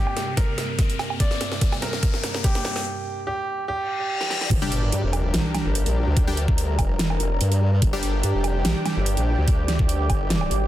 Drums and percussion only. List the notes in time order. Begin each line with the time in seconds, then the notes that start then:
0.07 low woodblock
0.17 snare, closed hi-hat
0.37 kick, snare, closed hi-hat
0.58 snare, closed hi-hat
0.79 kick, snare, closed hi-hat
0.90 closed hi-hat
0.99 snare, low woodblock
1.10 low woodblock
1.20 kick, snare, closed hi-hat
1.31 snare
1.41 snare, closed hi-hat
1.52 snare
1.61 kick, snare, closed hi-hat
1.72 snare, low woodblock
1.82 snare, closed hi-hat
1.93 snare
2.03 kick, snare, closed hi-hat
2.14 snare
2.24 snare, closed hi-hat
2.34 snare
2.44 kick, snare, closed hi-hat
2.55 snare, closed hi-hat
2.65 snare
2.76 snare
4.21 snare
4.30 snare
4.41 snare
4.51 kick, closed hi-hat, crash
4.72 closed hi-hat
4.92 closed hi-hat
5.13 closed hi-hat, low woodblock
5.34 snare, closed hi-hat
5.55 snare, closed hi-hat, low woodblock
5.75 closed hi-hat
5.86 closed hi-hat
6.17 kick, closed hi-hat
6.37 closed hi-hat
6.48 kick
6.58 closed hi-hat
6.79 kick, closed hi-hat, low woodblock
6.99 snare, closed hi-hat
7.10 low woodblock
7.20 closed hi-hat
7.41 closed hi-hat
7.52 closed hi-hat
7.82 kick, closed hi-hat
8.03 closed hi-hat
8.23 closed hi-hat
8.44 closed hi-hat, low woodblock
8.65 snare, closed hi-hat
8.86 snare, closed hi-hat, low woodblock
9.06 closed hi-hat
9.17 closed hi-hat
9.48 kick, closed hi-hat
9.68 snare, closed hi-hat
9.79 kick
9.89 closed hi-hat
10.10 kick, closed hi-hat, low woodblock
10.30 snare, closed hi-hat
10.41 low woodblock
10.51 closed hi-hat